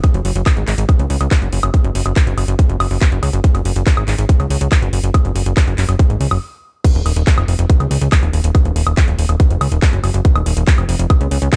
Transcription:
0.04 kick, closed hi-hat, high woodblock
0.14 F#1, closed hi-hat
0.25 F#1, open hi-hat
0.36 F#1, closed hi-hat
0.46 kick, clap, closed hi-hat, high woodblock
0.57 G#1, closed hi-hat
0.67 G#1, clap, open hi-hat
0.78 G#1, closed hi-hat
0.89 kick, closed hi-hat, high woodblock
0.99 C#2, closed hi-hat
1.10 C#2, open hi-hat
1.21 C#2, closed hi-hat, high woodblock
1.31 kick, clap, closed hi-hat
1.42 F#1, closed hi-hat
1.53 F#1, open hi-hat
1.63 F#1, closed hi-hat, high woodblock
1.74 kick, closed hi-hat
1.84 F#1, closed hi-hat
1.95 F#1, open hi-hat
2.06 F#1, closed hi-hat, high woodblock
2.16 kick, clap, closed hi-hat
2.27 F#1, closed hi-hat
2.38 F#1, open hi-hat, high woodblock
2.48 F#1, closed hi-hat
2.59 kick, closed hi-hat
2.70 F#1, closed hi-hat
2.80 F#1, open hi-hat, high woodblock
2.91 F#1, open hi-hat
3.01 kick, clap, closed hi-hat
3.12 F#1, closed hi-hat
3.23 C#2, open hi-hat, high woodblock
3.33 F#1, closed hi-hat
3.44 kick, closed hi-hat
3.55 F#1, closed hi-hat, high woodblock
3.65 F#1, open hi-hat
3.76 F#1, closed hi-hat
3.87 kick, clap, closed hi-hat
3.97 G#1, closed hi-hat, high woodblock
4.08 G#1, clap, open hi-hat
4.18 G#1, closed hi-hat
4.29 kick, closed hi-hat
4.40 C#2, closed hi-hat, high woodblock
4.50 C#2, open hi-hat
4.61 C#2, closed hi-hat
4.72 kick, clap, closed hi-hat, high woodblock
4.82 F#1, closed hi-hat
4.93 F#1, open hi-hat
5.04 F#1, closed hi-hat
5.14 kick, closed hi-hat, high woodblock
5.25 F#1, closed hi-hat
5.36 F#1, open hi-hat
5.46 F#1, closed hi-hat
5.57 kick, clap, closed hi-hat, high woodblock
5.67 F#1, closed hi-hat
5.78 F#1, clap, open hi-hat
5.89 F#1, closed hi-hat, high woodblock
5.99 kick, closed hi-hat
6.10 G#1, closed hi-hat
6.21 C#2, open hi-hat
6.31 F#1, open hi-hat, high woodblock
6.84 kick, closed hi-hat, crash
6.95 D#1, closed hi-hat
7.06 D#1, open hi-hat, high woodblock
7.16 D#1, closed hi-hat
7.27 kick, clap, closed hi-hat
7.38 F1, closed hi-hat, high woodblock
7.48 F1, open hi-hat
7.59 F1, closed hi-hat
7.70 kick, closed hi-hat
7.80 C#2, closed hi-hat, high woodblock
7.91 C#2, open hi-hat
8.01 C#2, closed hi-hat
8.12 kick, clap, closed hi-hat, high woodblock
8.23 D#1, closed hi-hat
8.33 D#1, open hi-hat
8.44 D#1, closed hi-hat
8.55 kick, closed hi-hat, high woodblock
8.65 D#1, closed hi-hat
8.76 D#1, open hi-hat
8.87 D#1, closed hi-hat, high woodblock
8.97 kick, clap, closed hi-hat
9.08 D#1, closed hi-hat
9.19 D#1, open hi-hat
9.29 D#1, closed hi-hat, high woodblock
9.40 kick, closed hi-hat
9.50 F1, closed hi-hat
9.61 C#2, open hi-hat, high woodblock
9.72 D#1, closed hi-hat
9.82 kick, clap, closed hi-hat
9.93 F#1, closed hi-hat
10.04 F#1, open hi-hat, high woodblock
10.14 F#1, closed hi-hat
10.25 kick, closed hi-hat
10.36 D#1, closed hi-hat, high woodblock
10.46 D#1, open hi-hat
10.57 D#1, closed hi-hat
10.67 kick, clap, closed hi-hat
10.78 F1, closed hi-hat, high woodblock
10.89 F1, open hi-hat
10.99 F1, closed hi-hat
11.10 kick, closed hi-hat, high woodblock
11.21 C#2, closed hi-hat
11.31 C#2, open hi-hat
11.42 C#2, closed hi-hat
11.53 kick, clap, closed hi-hat, high woodblock

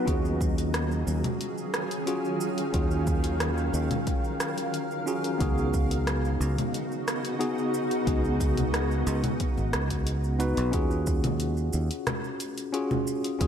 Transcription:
Already playing: F#3
0.05 D#2 D#3 C#4 F4 F#4 G#4 F5, kick, closed hi-hat, shaker
0.25 shaker
0.41 kick, shaker
0.58 closed hi-hat, shaker
0.74 cross-stick, closed hi-hat, shaker
0.91 shaker
1.07 D#2, shaker
1.24 closed hi-hat, low conga, shaker
1.41 closed hi-hat, shaker
1.58 shaker
1.74 cross-stick, closed hi-hat, shaker
1.91 closed hi-hat, shaker
2.06 C#4 F4 F#4 G#4, closed hi-hat, shaker
2.25 shaker
2.41 shaker
2.58 closed hi-hat, shaker
2.72 D#2 C#4 F4 F#4 G#4 A#4, kick, closed hi-hat, shaker
2.91 shaker
3.07 kick, shaker
3.24 closed hi-hat, shaker
3.40 cross-stick, closed hi-hat, shaker
3.58 shaker
3.74 D#2, shaker
3.91 closed hi-hat, low conga, shaker
4.07 kick, closed hi-hat, shaker
4.24 shaker
4.40 cross-stick, closed hi-hat, shaker
4.58 closed hi-hat, shaker
4.74 closed hi-hat, shaker
4.91 shaker
5.06 C#4 F4 F#4 G#4, shaker
5.24 closed hi-hat, shaker
5.38 C#2 C#3 B3 D#4 F#4 G#4, kick, closed hi-hat, shaker
5.58 shaker
5.74 kick, shaker
5.91 closed hi-hat, shaker
6.07 cross-stick, closed hi-hat, shaker
6.25 shaker
6.40 C#2, shaker
6.58 closed hi-hat, low conga, shaker
6.74 closed hi-hat, shaker
6.92 shaker
7.08 cross-stick, closed hi-hat, shaker
7.25 closed hi-hat, shaker
7.39 B3 D#4 F#4 G#4, closed hi-hat, shaker
7.58 shaker
7.74 shaker
7.91 closed hi-hat, shaker
8.05 C#2 B3 D#4 F#4 G#4, kick, closed hi-hat, shaker
8.25 shaker
8.40 kick, closed hi-hat, shaker
8.57 closed hi-hat, low conga, shaker
8.74 cross-stick, closed hi-hat, shaker
8.91 shaker
9.07 C#2, closed hi-hat, shaker
9.24 closed hi-hat, low conga, shaker
9.40 kick, closed hi-hat, shaker
9.57 G#1, shaker
9.73 C#2, cross-stick, closed hi-hat, shaker
9.90 kick, closed hi-hat, shaker
10.07 closed hi-hat, shaker
10.24 shaker
10.39 B3 D#4 F#4 B4, closed hi-hat, shaker
10.57 B1, closed hi-hat, shaker
10.72 D#2 C#4 F4 F#4 G#4, kick, closed hi-hat, shaker
10.91 shaker
11.07 kick, shaker
11.24 closed hi-hat, low conga, shaker
11.40 closed hi-hat, shaker
11.57 shaker
11.73 D#2, shaker
11.91 closed hi-hat, shaker
12.07 cross-stick, closed hi-hat, low conga, shaker
12.24 shaker
12.40 closed hi-hat, shaker
12.58 closed hi-hat, shaker
12.72 C#4 F4 F#4 G#4, closed hi-hat, shaker
12.91 low conga, shaker
13.07 shaker
13.24 closed hi-hat, shaker
13.39 D#2 C#4 F4 F#4 G#4, kick, closed hi-hat, shaker

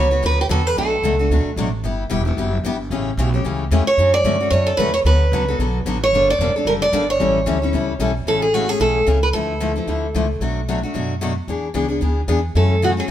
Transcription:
Already playing: C#2 C#5
0.11 B3 F#4 B4
0.22 D2 D3 F#3 B3 F#4 B4
0.41 G4
0.49 E2 D3 F#3 B3 F#4 A4 B4
0.67 B4
0.77 B1 B2 F#3 A3 D4 F#4 A4
1.03 C#2 B2 F#3 A3 D4 F#4
1.19 A3 D4 F#4
1.30 D2 B2 F#3 A3 D4 F#4
1.45 muted upright bass stroke
1.56 A1 B2 F#3 A3 D4 F#4
1.83 G1 G3 B3 E4 G4
2.10 E1 G3 B3 E4 G4
2.25 B3 E4 G4
2.37 F#1 G3 B3 E4 G4
2.64 G1 G3 B3 E4 G4
2.91 A1 C#3 E3 A3 C#4 G4
3.17 B1 C#3 E3 A3 C#4 G4
3.34 A3 C#4 G4
3.44 C#2 C#3 E3 A3 C#4 G4
3.71 E2 C#3 E3 A3 C#4 G4
3.86 C#5, muted upright bass stroke
3.97 F#2 D3 F#3 A3 C#4 F#4
4.14 D5
4.24 G2 D3 F#3 A3 C#4 F#4
4.41 A3 C#4 F#4
4.50 F#2 D3 F#3 A3 C#4 F#4 C#5
4.67 A4
4.77 E2 D3 F#3 A3 C#4 F#4 B4
4.94 C#5
5.05 D2 D3 F#3 B3 F#4 A4 B4
5.32 C#2 D3 F#3 B3 F#4 A4
5.48 B3 F#4 A4
5.59 B1 D3 F#3 B3 F#4 A4
5.86 A1 D3 F#3 B3 F#4 A4
6.04 C#5
6.13 G1 D3 G3 A#3 D4 A4
6.30 D5
6.39 E1 D3 G3 A#3 D4 A4
6.56 A#3 D4 A4
6.65 F#1 D3 G3 A#3 D4 A4 A#4
6.82 D5
6.92 G1 D3 G3 A#3 D4 A4
7.10 C#5
7.20 A1 E3 G3 C#4 E4 A4
7.46 D2 E3 G3 C#4 E4 A4
7.62 C#4 E4 A4
7.73 C#2 E3 G3 C#4 E4 A4
7.99 B1 E3 G3 C#4 E4 A4
8.26 A1 C#3 E3 A3 C#4 G#4 A4
8.42 G#4
8.54 C#3 E3 A3 C#4 F#4 G#4
8.68 A3 C#4 G#4
8.80 B1 C#3 E3 A3 C#4 G#4 A4
9.07 C#2 C#3 E3 A3 C#4 G#4
9.23 B4
9.33 D2 D3 F3 A3 E4 A4
9.60 D3 F3 A3 E4
9.76 F3 A3 E4
9.87 D2 D3 F3 A3 E4
10.14 C#2 D3 F3 A3 E4
10.40 B1 B2 F#3 A3 D4 F#4
10.68 B2 F#3 A3 D4 F#4
10.83 A3 D4 F#4
10.94 F#2 B2 F#3 A3 D4 F#4
11.21 B2 F#3 A3 D4 F#4
11.48 E2 E3 B3 D4 G#4
11.74 C#2 E3 B3 D4 G#4
11.89 B3 D4 G#4
12.01 D2 E3 B3 D4 G#4
12.28 E2 E3 B3 D4 G#4
12.55 F#2 C#3 E3 A3 C#4 F#4 A4
12.82 C#3 E3 A3 C#4 F#4
12.97 A3 C#4 F#4 G#4
13.08 C#3

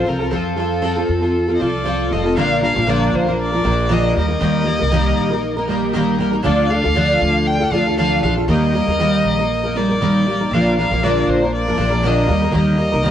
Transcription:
0.04 C2 F3 C4 F4 A4
0.08 A#4
0.19 C4 F4 A4
0.30 F2 F3 C4 F4 A4
0.35 A4
0.56 F3 C4 F4 A4
0.82 F3 C4 F4 A4
0.97 C4 F4 A4
1.09 F2
1.21 C4 F4 A4
1.48 C4 F4 A4
1.55 D#5
1.59 C2 F3 C4 F4 A4 D5
1.84 F3 C4 F4 A4
2.11 F1 F3 C4 F4 A4 D#5
2.24 C4 F4 A4
2.36 A#1 A#2 D3 F3 A#3 D4 A#4 F5
2.61 F3 A#3 D4 A#4 F5
2.75 A#1 F3 A#3 D4 A#4
2.86 A#2 D3 F3 A#3 D4 A#4 D5
3.14 A#1 C5
3.26 F3 A#3 D4 A#4
3.42 D5
3.52 F3 A#3 D4 A#4
3.63 A#1 F3 A#3 D4 A#4
3.89 A#2 D3 F3 A#3 D4 A#4 D#5
4.15 D#2 G3 A#3 D#4 A#4 D#5
4.28 A#3 D#4 A#4
4.40 D#2 D#3 G3 A#3 D#4 A#4
4.65 G3 A#3 D#4 A#4
4.79 C2 A#3 D#4 A#4
4.91 D#3 G3 A#3 D#4 A#4
5.18 A#1
5.30 A#3 D#4 A#4
5.57 A#3 D#4 A#4
5.67 G3 A#3 D#4 A#4
5.93 D#3 G3 A#3 D#4 A#4
6.18 G3 A#3 D#4 A#4
6.32 A#3 D#4 A#4
6.43 D2 D3 F3 D4 F4 A4 D5
6.68 F3 D4 F4 A4 F5
6.84 D2 D4 F4 A4
6.95 D3 F3 D4 F4 A4
7.21 D2
7.47 G5
7.60 D4 F4 A4
7.71 D2 F3 D4 F4 A4 F5
7.87 D4 F4 A4
7.97 D3 F3 D4 F4 A4 F5
8.22 A#1 F3 D4 F4 A4 F5
8.37 D4 F4 A4
8.48 D#2 D#3 G3 A#3 D#4 A#4 D#5
8.74 G3 A#3 D#4 A#4
8.87 D#2 A#3 D#4 A#4
8.99 D#3 G3 A#3 D#4 A#4
9.24 A#1
9.39 A#3 D#4 A#4
9.64 A#3 D#4 A#4
9.75 G3 A#3 D#4 A#4 D5
9.89 A#3 D#4 A#4
10.01 D#3 G3 A#3 D#4 A#4
10.26 G3 A#3 D#4 A#4
10.41 A#3 D#4 A#4
10.51 A#1 A#2 D3 F3 A#3 D4 A#4 F5
10.78 F3 A#3 D4 A#4 F5
10.91 A#1 F3 A#3 D4 A#4
11.03 A#2 D3 F3 A#3 D4 A#4 D5
11.28 A#1 C5
11.41 F3 A#3 D4 A#4
11.55 D5
11.66 F3 A#3 D4 A#4
11.77 A#1 F3 A#3 D4 A#4
11.90 F3 A#3 D4 A#4
12.02 A#2 D3 F3 A#3 D4 A#4
12.07 D#5
12.27 D#2 G3 A#3 D#4 A#4
12.42 A#3 D#4 A#4
12.51 D#2 D#3 G3 A#3 D#4 A#4
12.57 D#5
12.77 G3 A#3 D#4 A#4
12.92 C2 A#3 D#4 A#4
13.03 D#3 G3 A#3 D#4 A#4

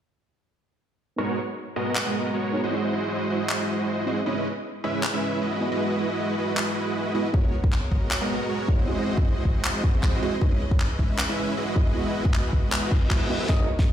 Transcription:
1.16 G#3 B3 D#4 F#4 A#4 C#5
1.20 C#5
1.76 G#3 B3 F#4 A#4 D#5
1.95 clap
2.06 G#3 B3 F#4 A#4 D#5
2.34 G#3 B3 F#4 A#4 C#5
2.52 B3 D#4 F#4 A#4 C#5
2.64 G#3 E4 F#4 C5 D#5
2.70 C4 E4 F#4 G#4 D#5
3.30 G#3 E4 F#4 C5 D#5
3.49 clap
4.06 G#3 C4 E4 F#4 G#4 C5 D#5
4.24 G#3 B3 C#4 D#4 E4 G#4 B4 C#5 D#5
4.84 G#3 C#4 E4 B4 E5
5.03 clap
5.14 G#3 C#4 E4 B4 E5
5.42 G#3 E4 F#4 B4 D#5
5.60 B3 E4 F#4 G#4 D#5
5.72 G#3 E4 F#4 B4 D#5
5.78 B3 E4 F#4 G#4 D#5
6.38 G#3 E4 F#4 B4 D#5
6.57 clap
7.14 G#3 B3 E4 F#4 G#4 B4 D#5
7.32 G#3 B3 D#4 F#4 G#4 A#4 C#5, kick
7.36 C#5
7.64 kick
7.72 clap
7.92 G#3 B3 F#4 A#4 D#5, kick
8.11 clap
8.21 G#3 B3 F#4 A#4 D#5
8.49 G#3 B3 F#4 A#4 C#5
8.67 B3 D#4 F#4 A#4 C#5, kick
8.79 G#3 E4 F#4 C5 D#5
8.86 E3 C4 E4 F#4 G#4 D#5
9.17 kick
9.45 G#3 E4 F#4 C5 D#5, kick
9.64 clap
9.84 kick
10.03 kick, clap
10.21 G#3 C4 E4 F#4 G#4 C5 D#5
10.40 G#3 B3 C#4 D#4 E4 G#4 B4 C#5 D#5, kick
10.71 kick
10.80 clap
10.99 G#3 C#4 E4 B4 E5, kick
11.18 clap
11.29 G#3 C#4 E4 B4 E5
11.57 G#3 E4 F#4 B4 D#5
11.75 B3 E4 F#4 G#4 D#5, kick
11.87 G#3 E4 F#4 B4 D#5
11.93 B3 E4 F#4 G#4 D#5
12.25 kick
12.34 clap
12.53 G#3 E4 B4 D#5, kick
12.72 clap, reverse cymbal
12.91 kick
13.11 kick, clap
13.29 G#3 B3 E4 F#4 G#4 B4 D#5 E5
13.47 G#1 C#3 G#3 B3 D#4 F#4 A#4 C#5 D#5, kick, snare, riser
13.79 kick, snare

